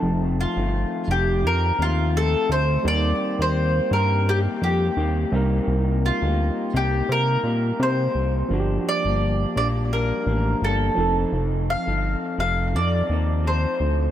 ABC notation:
X:1
M:4/4
L:1/16
Q:"Swing 16ths" 1/4=85
K:Fmix
V:1 name="Mandolin"
z2 F4 G2 B2 F2 A2 c2 | d3 c3 B2 G2 G4 z2 | z2 F4 G2 B4 c3 z | z2 d4 d2 B4 A3 z |
z2 f4 f2 d4 c3 z |]
V:2 name="Tine electric piano"
[F,CEa]12- [F,CEa]2 z2 | [G,CEB]12- [G,CEB]2 [G,CEB]2- | [G,CEB]12- [G,CEB]2 z2 | [F,B,D^FG]12- [=F,B,D^FG]2 [=F,CEA]2- |
[F,CEA]12- [F,CEA]2 z2 |]
V:3 name="Clean electric guitar"
[F,,E,A,C]3 [E,A,C]3 [F,,E,A,C]2 [F,,E,C]2 [F,,E,A,C]2 [F,,A,C]4 | [E,B,CG]3 [B,CG]3 [E,B,CG]2 [E,B,CG]2 [E,B,CG]2 [E,B,CG]2 [C,B,EG]2- | [C,B,EG]3 [B,EG]3 [C,B,EG]2 [C,B,EG]2 [C,B,EG]2 [C,B,EG]4 | [G,,F,B,D]3 [F,B,D]3 [G,,F,B,D]2 [G,,F,B,D]2 [G,,F,B,D]2 [G,,F,B,D]2 [F,CEA]2- |
[F,CEA]3 [CEA]3 [F,CEA]2 [F,CEA]2 [F,CEA]2 [F,CEA]4 |]
V:4 name="Analog synth bass" clef=bass
F,,,3 G,,,2 z F,,,2 F,,2 E,,4 D,,2 | E,,2 z E,,3 G,,4 F,,2 E,,2 C,,2 | C,,3 D,,2 z C,,2 C,2 B,,2 C,2 C,,2 | G,,,2 z G,,,3 B,,,4 A,,,2 G,,,2 F,,,2 |
F,,,3 G,,,2 z F,,,2 F,,2 E,,4 D,,2 |]